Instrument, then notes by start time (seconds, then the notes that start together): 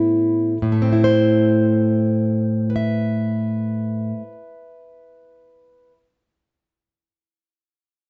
steel-string acoustic guitar
Already playing: A2 E3 B3 C4 E4
0.62 A2
0.72 A3
0.82 C4
0.93 E4
1.04 C5
2.70 B4
2.76 E5